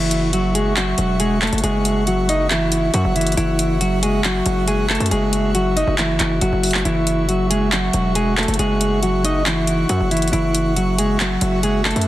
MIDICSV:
0, 0, Header, 1, 5, 480
1, 0, Start_track
1, 0, Tempo, 434783
1, 1805, Time_signature, 4, 2, 24, 8
1, 13333, End_track
2, 0, Start_track
2, 0, Title_t, "Analog synth pad"
2, 0, Program_c, 0, 89
2, 0, Note_on_c, 0, 66, 82
2, 0, Note_on_c, 0, 76, 74
2, 0, Note_on_c, 0, 78, 76
2, 0, Note_on_c, 0, 85, 89
2, 3685, Note_off_c, 0, 85, 0
2, 3726, Note_on_c, 0, 85, 86
2, 7520, Note_off_c, 0, 78, 0
2, 7563, Note_on_c, 0, 78, 74
2, 11360, Note_off_c, 0, 66, 0
2, 11360, Note_off_c, 0, 76, 0
2, 11404, Note_on_c, 0, 76, 76
2, 11405, Note_on_c, 0, 66, 83
2, 13333, Note_off_c, 0, 66, 0
2, 13333, Note_off_c, 0, 76, 0
2, 13333, Note_off_c, 0, 78, 0
2, 13333, Note_off_c, 0, 85, 0
2, 13333, End_track
3, 0, Start_track
3, 0, Title_t, "Clean electric guitar"
3, 0, Program_c, 1, 27
3, 0, Note_on_c, 1, 52, 76
3, 0, Note_on_c, 1, 64, 107
3, 337, Note_off_c, 1, 64, 0
3, 342, Note_off_c, 1, 52, 0
3, 365, Note_on_c, 1, 66, 84
3, 374, Note_on_c, 1, 54, 69
3, 582, Note_off_c, 1, 66, 0
3, 587, Note_off_c, 1, 54, 0
3, 605, Note_on_c, 1, 68, 81
3, 614, Note_on_c, 1, 56, 66
3, 822, Note_off_c, 1, 68, 0
3, 827, Note_off_c, 1, 56, 0
3, 847, Note_on_c, 1, 66, 82
3, 857, Note_on_c, 1, 54, 62
3, 1297, Note_off_c, 1, 66, 0
3, 1302, Note_off_c, 1, 54, 0
3, 1325, Note_on_c, 1, 68, 84
3, 1335, Note_on_c, 1, 56, 63
3, 1542, Note_off_c, 1, 68, 0
3, 1547, Note_off_c, 1, 56, 0
3, 1566, Note_on_c, 1, 69, 84
3, 1575, Note_on_c, 1, 57, 64
3, 1782, Note_off_c, 1, 69, 0
3, 1787, Note_off_c, 1, 57, 0
3, 1807, Note_on_c, 1, 68, 103
3, 1816, Note_on_c, 1, 56, 76
3, 2257, Note_off_c, 1, 68, 0
3, 2262, Note_off_c, 1, 56, 0
3, 2291, Note_on_c, 1, 66, 83
3, 2300, Note_on_c, 1, 54, 64
3, 2505, Note_off_c, 1, 66, 0
3, 2510, Note_off_c, 1, 54, 0
3, 2527, Note_on_c, 1, 63, 81
3, 2536, Note_on_c, 1, 75, 71
3, 2743, Note_off_c, 1, 63, 0
3, 2748, Note_off_c, 1, 75, 0
3, 2766, Note_on_c, 1, 64, 90
3, 2774, Note_on_c, 1, 52, 67
3, 3217, Note_off_c, 1, 64, 0
3, 3221, Note_off_c, 1, 52, 0
3, 3247, Note_on_c, 1, 66, 89
3, 3255, Note_on_c, 1, 54, 69
3, 3463, Note_off_c, 1, 66, 0
3, 3467, Note_off_c, 1, 54, 0
3, 3488, Note_on_c, 1, 64, 77
3, 3496, Note_on_c, 1, 52, 56
3, 3703, Note_off_c, 1, 64, 0
3, 3708, Note_off_c, 1, 52, 0
3, 3724, Note_on_c, 1, 64, 113
3, 3733, Note_on_c, 1, 52, 85
3, 4175, Note_off_c, 1, 64, 0
3, 4181, Note_off_c, 1, 52, 0
3, 4204, Note_on_c, 1, 66, 89
3, 4213, Note_on_c, 1, 54, 65
3, 4421, Note_off_c, 1, 66, 0
3, 4426, Note_off_c, 1, 54, 0
3, 4447, Note_on_c, 1, 68, 81
3, 4456, Note_on_c, 1, 56, 64
3, 4663, Note_off_c, 1, 68, 0
3, 4668, Note_off_c, 1, 56, 0
3, 4690, Note_on_c, 1, 66, 86
3, 4698, Note_on_c, 1, 54, 64
3, 5139, Note_off_c, 1, 66, 0
3, 5143, Note_off_c, 1, 54, 0
3, 5165, Note_on_c, 1, 68, 84
3, 5173, Note_on_c, 1, 56, 63
3, 5382, Note_off_c, 1, 68, 0
3, 5386, Note_off_c, 1, 56, 0
3, 5404, Note_on_c, 1, 69, 85
3, 5413, Note_on_c, 1, 57, 68
3, 5621, Note_off_c, 1, 69, 0
3, 5626, Note_off_c, 1, 57, 0
3, 5645, Note_on_c, 1, 68, 101
3, 5654, Note_on_c, 1, 56, 86
3, 6096, Note_off_c, 1, 68, 0
3, 6101, Note_off_c, 1, 56, 0
3, 6126, Note_on_c, 1, 66, 88
3, 6135, Note_on_c, 1, 54, 71
3, 6342, Note_off_c, 1, 66, 0
3, 6347, Note_off_c, 1, 54, 0
3, 6363, Note_on_c, 1, 63, 84
3, 6372, Note_on_c, 1, 75, 65
3, 6581, Note_off_c, 1, 63, 0
3, 6585, Note_off_c, 1, 75, 0
3, 6607, Note_on_c, 1, 64, 91
3, 6616, Note_on_c, 1, 52, 71
3, 7057, Note_off_c, 1, 64, 0
3, 7062, Note_off_c, 1, 52, 0
3, 7082, Note_on_c, 1, 66, 86
3, 7091, Note_on_c, 1, 54, 69
3, 7535, Note_off_c, 1, 66, 0
3, 7539, Note_off_c, 1, 54, 0
3, 7567, Note_on_c, 1, 64, 109
3, 7575, Note_on_c, 1, 52, 77
3, 8017, Note_off_c, 1, 64, 0
3, 8022, Note_off_c, 1, 52, 0
3, 8043, Note_on_c, 1, 66, 82
3, 8052, Note_on_c, 1, 54, 72
3, 8261, Note_off_c, 1, 66, 0
3, 8266, Note_off_c, 1, 54, 0
3, 8283, Note_on_c, 1, 68, 83
3, 8292, Note_on_c, 1, 56, 67
3, 8501, Note_off_c, 1, 68, 0
3, 8506, Note_off_c, 1, 56, 0
3, 8526, Note_on_c, 1, 66, 83
3, 8534, Note_on_c, 1, 54, 64
3, 8977, Note_off_c, 1, 66, 0
3, 8981, Note_off_c, 1, 54, 0
3, 9005, Note_on_c, 1, 68, 86
3, 9014, Note_on_c, 1, 56, 62
3, 9222, Note_off_c, 1, 68, 0
3, 9227, Note_off_c, 1, 56, 0
3, 9247, Note_on_c, 1, 69, 89
3, 9255, Note_on_c, 1, 57, 66
3, 9463, Note_off_c, 1, 69, 0
3, 9467, Note_off_c, 1, 57, 0
3, 9487, Note_on_c, 1, 68, 104
3, 9496, Note_on_c, 1, 56, 75
3, 9937, Note_off_c, 1, 68, 0
3, 9942, Note_off_c, 1, 56, 0
3, 9969, Note_on_c, 1, 66, 82
3, 9978, Note_on_c, 1, 54, 66
3, 10184, Note_off_c, 1, 66, 0
3, 10189, Note_off_c, 1, 54, 0
3, 10205, Note_on_c, 1, 63, 85
3, 10215, Note_on_c, 1, 75, 70
3, 10422, Note_off_c, 1, 63, 0
3, 10427, Note_off_c, 1, 75, 0
3, 10444, Note_on_c, 1, 64, 94
3, 10452, Note_on_c, 1, 52, 69
3, 10895, Note_off_c, 1, 64, 0
3, 10900, Note_off_c, 1, 52, 0
3, 10924, Note_on_c, 1, 66, 86
3, 10932, Note_on_c, 1, 54, 67
3, 11141, Note_off_c, 1, 66, 0
3, 11146, Note_off_c, 1, 54, 0
3, 11164, Note_on_c, 1, 64, 77
3, 11173, Note_on_c, 1, 52, 58
3, 11381, Note_off_c, 1, 64, 0
3, 11386, Note_off_c, 1, 52, 0
3, 11401, Note_on_c, 1, 64, 115
3, 11410, Note_on_c, 1, 52, 86
3, 11854, Note_off_c, 1, 64, 0
3, 11859, Note_off_c, 1, 52, 0
3, 11883, Note_on_c, 1, 66, 88
3, 11892, Note_on_c, 1, 54, 66
3, 12101, Note_off_c, 1, 66, 0
3, 12106, Note_off_c, 1, 54, 0
3, 12127, Note_on_c, 1, 68, 83
3, 12136, Note_on_c, 1, 56, 63
3, 12343, Note_off_c, 1, 68, 0
3, 12348, Note_off_c, 1, 56, 0
3, 12370, Note_on_c, 1, 66, 82
3, 12379, Note_on_c, 1, 54, 65
3, 12819, Note_off_c, 1, 66, 0
3, 12824, Note_off_c, 1, 54, 0
3, 12845, Note_on_c, 1, 68, 85
3, 12854, Note_on_c, 1, 56, 65
3, 13062, Note_off_c, 1, 68, 0
3, 13066, Note_off_c, 1, 56, 0
3, 13084, Note_on_c, 1, 69, 84
3, 13093, Note_on_c, 1, 57, 66
3, 13301, Note_off_c, 1, 69, 0
3, 13306, Note_off_c, 1, 57, 0
3, 13333, End_track
4, 0, Start_track
4, 0, Title_t, "808-style bass"
4, 0, Program_c, 2, 38
4, 0, Note_on_c, 2, 30, 116
4, 1041, Note_off_c, 2, 30, 0
4, 1085, Note_on_c, 2, 28, 101
4, 1661, Note_off_c, 2, 28, 0
4, 1686, Note_on_c, 2, 30, 106
4, 1798, Note_off_c, 2, 30, 0
4, 1805, Note_on_c, 2, 30, 119
4, 3201, Note_off_c, 2, 30, 0
4, 3245, Note_on_c, 2, 42, 109
4, 3360, Note_off_c, 2, 42, 0
4, 3366, Note_on_c, 2, 30, 100
4, 3711, Note_off_c, 2, 30, 0
4, 3725, Note_on_c, 2, 30, 116
4, 4881, Note_off_c, 2, 30, 0
4, 4925, Note_on_c, 2, 30, 107
4, 5501, Note_off_c, 2, 30, 0
4, 5524, Note_on_c, 2, 42, 108
4, 5640, Note_off_c, 2, 42, 0
4, 5645, Note_on_c, 2, 30, 113
4, 6451, Note_off_c, 2, 30, 0
4, 6484, Note_on_c, 2, 30, 103
4, 6830, Note_off_c, 2, 30, 0
4, 6845, Note_on_c, 2, 30, 107
4, 7075, Note_off_c, 2, 30, 0
4, 7085, Note_on_c, 2, 30, 115
4, 7200, Note_off_c, 2, 30, 0
4, 7205, Note_on_c, 2, 30, 102
4, 7550, Note_off_c, 2, 30, 0
4, 7565, Note_on_c, 2, 30, 114
4, 8721, Note_off_c, 2, 30, 0
4, 8764, Note_on_c, 2, 28, 107
4, 9341, Note_off_c, 2, 28, 0
4, 9365, Note_on_c, 2, 30, 105
4, 9480, Note_off_c, 2, 30, 0
4, 9484, Note_on_c, 2, 30, 112
4, 10881, Note_off_c, 2, 30, 0
4, 10924, Note_on_c, 2, 42, 114
4, 11040, Note_off_c, 2, 42, 0
4, 11045, Note_on_c, 2, 30, 104
4, 11391, Note_off_c, 2, 30, 0
4, 11405, Note_on_c, 2, 30, 114
4, 12561, Note_off_c, 2, 30, 0
4, 12604, Note_on_c, 2, 30, 106
4, 13180, Note_off_c, 2, 30, 0
4, 13204, Note_on_c, 2, 42, 107
4, 13320, Note_off_c, 2, 42, 0
4, 13333, End_track
5, 0, Start_track
5, 0, Title_t, "Drums"
5, 123, Note_on_c, 9, 42, 89
5, 233, Note_off_c, 9, 42, 0
5, 365, Note_on_c, 9, 42, 70
5, 475, Note_off_c, 9, 42, 0
5, 607, Note_on_c, 9, 42, 82
5, 718, Note_off_c, 9, 42, 0
5, 845, Note_on_c, 9, 39, 127
5, 847, Note_on_c, 9, 42, 91
5, 955, Note_off_c, 9, 39, 0
5, 958, Note_off_c, 9, 42, 0
5, 1079, Note_on_c, 9, 42, 90
5, 1190, Note_off_c, 9, 42, 0
5, 1321, Note_on_c, 9, 42, 85
5, 1432, Note_off_c, 9, 42, 0
5, 1565, Note_on_c, 9, 39, 96
5, 1565, Note_on_c, 9, 42, 43
5, 1625, Note_off_c, 9, 42, 0
5, 1625, Note_on_c, 9, 42, 52
5, 1675, Note_off_c, 9, 39, 0
5, 1685, Note_off_c, 9, 42, 0
5, 1685, Note_on_c, 9, 42, 64
5, 1745, Note_off_c, 9, 42, 0
5, 1745, Note_on_c, 9, 42, 75
5, 1806, Note_off_c, 9, 42, 0
5, 1806, Note_on_c, 9, 42, 82
5, 1916, Note_off_c, 9, 42, 0
5, 2043, Note_on_c, 9, 42, 87
5, 2153, Note_off_c, 9, 42, 0
5, 2285, Note_on_c, 9, 42, 68
5, 2395, Note_off_c, 9, 42, 0
5, 2527, Note_on_c, 9, 42, 85
5, 2638, Note_off_c, 9, 42, 0
5, 2764, Note_on_c, 9, 39, 127
5, 2767, Note_on_c, 9, 42, 88
5, 2875, Note_off_c, 9, 39, 0
5, 2878, Note_off_c, 9, 42, 0
5, 3000, Note_on_c, 9, 42, 93
5, 3110, Note_off_c, 9, 42, 0
5, 3242, Note_on_c, 9, 42, 83
5, 3352, Note_off_c, 9, 42, 0
5, 3485, Note_on_c, 9, 42, 59
5, 3546, Note_off_c, 9, 42, 0
5, 3546, Note_on_c, 9, 42, 58
5, 3605, Note_off_c, 9, 42, 0
5, 3605, Note_on_c, 9, 42, 60
5, 3665, Note_off_c, 9, 42, 0
5, 3665, Note_on_c, 9, 42, 58
5, 3726, Note_off_c, 9, 42, 0
5, 3726, Note_on_c, 9, 42, 80
5, 3836, Note_off_c, 9, 42, 0
5, 3963, Note_on_c, 9, 42, 91
5, 4073, Note_off_c, 9, 42, 0
5, 4204, Note_on_c, 9, 42, 71
5, 4315, Note_off_c, 9, 42, 0
5, 4447, Note_on_c, 9, 42, 84
5, 4557, Note_off_c, 9, 42, 0
5, 4684, Note_on_c, 9, 39, 124
5, 4687, Note_on_c, 9, 42, 91
5, 4794, Note_off_c, 9, 39, 0
5, 4797, Note_off_c, 9, 42, 0
5, 4920, Note_on_c, 9, 42, 90
5, 5030, Note_off_c, 9, 42, 0
5, 5162, Note_on_c, 9, 42, 84
5, 5272, Note_off_c, 9, 42, 0
5, 5404, Note_on_c, 9, 39, 99
5, 5404, Note_on_c, 9, 42, 43
5, 5464, Note_off_c, 9, 42, 0
5, 5464, Note_on_c, 9, 42, 52
5, 5515, Note_off_c, 9, 39, 0
5, 5525, Note_off_c, 9, 42, 0
5, 5525, Note_on_c, 9, 42, 63
5, 5584, Note_off_c, 9, 42, 0
5, 5584, Note_on_c, 9, 42, 72
5, 5645, Note_off_c, 9, 42, 0
5, 5645, Note_on_c, 9, 42, 80
5, 5755, Note_off_c, 9, 42, 0
5, 5882, Note_on_c, 9, 42, 90
5, 5993, Note_off_c, 9, 42, 0
5, 6124, Note_on_c, 9, 42, 71
5, 6234, Note_off_c, 9, 42, 0
5, 6367, Note_on_c, 9, 42, 83
5, 6477, Note_off_c, 9, 42, 0
5, 6603, Note_on_c, 9, 39, 127
5, 6606, Note_on_c, 9, 42, 92
5, 6714, Note_off_c, 9, 39, 0
5, 6717, Note_off_c, 9, 42, 0
5, 6839, Note_on_c, 9, 42, 91
5, 6845, Note_on_c, 9, 39, 70
5, 6950, Note_off_c, 9, 42, 0
5, 6955, Note_off_c, 9, 39, 0
5, 7081, Note_on_c, 9, 42, 81
5, 7192, Note_off_c, 9, 42, 0
5, 7324, Note_on_c, 9, 42, 70
5, 7328, Note_on_c, 9, 46, 73
5, 7405, Note_off_c, 9, 42, 0
5, 7405, Note_on_c, 9, 42, 56
5, 7438, Note_off_c, 9, 46, 0
5, 7444, Note_on_c, 9, 39, 99
5, 7485, Note_off_c, 9, 42, 0
5, 7485, Note_on_c, 9, 42, 42
5, 7555, Note_off_c, 9, 39, 0
5, 7565, Note_off_c, 9, 42, 0
5, 7565, Note_on_c, 9, 42, 77
5, 7676, Note_off_c, 9, 42, 0
5, 7803, Note_on_c, 9, 42, 86
5, 7913, Note_off_c, 9, 42, 0
5, 8044, Note_on_c, 9, 42, 68
5, 8155, Note_off_c, 9, 42, 0
5, 8287, Note_on_c, 9, 42, 86
5, 8397, Note_off_c, 9, 42, 0
5, 8524, Note_on_c, 9, 39, 127
5, 8527, Note_on_c, 9, 42, 89
5, 8635, Note_off_c, 9, 39, 0
5, 8638, Note_off_c, 9, 42, 0
5, 8759, Note_on_c, 9, 42, 94
5, 8870, Note_off_c, 9, 42, 0
5, 9002, Note_on_c, 9, 42, 82
5, 9112, Note_off_c, 9, 42, 0
5, 9245, Note_on_c, 9, 39, 95
5, 9245, Note_on_c, 9, 42, 42
5, 9305, Note_off_c, 9, 42, 0
5, 9305, Note_on_c, 9, 42, 51
5, 9356, Note_off_c, 9, 39, 0
5, 9365, Note_off_c, 9, 42, 0
5, 9365, Note_on_c, 9, 42, 62
5, 9425, Note_off_c, 9, 42, 0
5, 9425, Note_on_c, 9, 42, 72
5, 9485, Note_off_c, 9, 42, 0
5, 9485, Note_on_c, 9, 42, 80
5, 9596, Note_off_c, 9, 42, 0
5, 9723, Note_on_c, 9, 42, 88
5, 9834, Note_off_c, 9, 42, 0
5, 9964, Note_on_c, 9, 42, 70
5, 10075, Note_off_c, 9, 42, 0
5, 10207, Note_on_c, 9, 42, 85
5, 10318, Note_off_c, 9, 42, 0
5, 10445, Note_on_c, 9, 39, 127
5, 10448, Note_on_c, 9, 42, 89
5, 10555, Note_off_c, 9, 39, 0
5, 10558, Note_off_c, 9, 42, 0
5, 10680, Note_on_c, 9, 42, 93
5, 10790, Note_off_c, 9, 42, 0
5, 10922, Note_on_c, 9, 42, 82
5, 11032, Note_off_c, 9, 42, 0
5, 11165, Note_on_c, 9, 42, 58
5, 11225, Note_off_c, 9, 42, 0
5, 11225, Note_on_c, 9, 42, 57
5, 11285, Note_off_c, 9, 42, 0
5, 11285, Note_on_c, 9, 42, 59
5, 11344, Note_off_c, 9, 42, 0
5, 11344, Note_on_c, 9, 42, 59
5, 11404, Note_off_c, 9, 42, 0
5, 11404, Note_on_c, 9, 42, 79
5, 11514, Note_off_c, 9, 42, 0
5, 11642, Note_on_c, 9, 42, 89
5, 11752, Note_off_c, 9, 42, 0
5, 11884, Note_on_c, 9, 42, 70
5, 11995, Note_off_c, 9, 42, 0
5, 12127, Note_on_c, 9, 42, 86
5, 12237, Note_off_c, 9, 42, 0
5, 12364, Note_on_c, 9, 39, 127
5, 12367, Note_on_c, 9, 42, 87
5, 12474, Note_off_c, 9, 39, 0
5, 12477, Note_off_c, 9, 42, 0
5, 12599, Note_on_c, 9, 42, 93
5, 12709, Note_off_c, 9, 42, 0
5, 12841, Note_on_c, 9, 42, 82
5, 12952, Note_off_c, 9, 42, 0
5, 13084, Note_on_c, 9, 39, 102
5, 13084, Note_on_c, 9, 42, 42
5, 13144, Note_off_c, 9, 42, 0
5, 13144, Note_on_c, 9, 42, 51
5, 13194, Note_off_c, 9, 39, 0
5, 13204, Note_off_c, 9, 42, 0
5, 13204, Note_on_c, 9, 42, 64
5, 13264, Note_off_c, 9, 42, 0
5, 13264, Note_on_c, 9, 42, 70
5, 13333, Note_off_c, 9, 42, 0
5, 13333, End_track
0, 0, End_of_file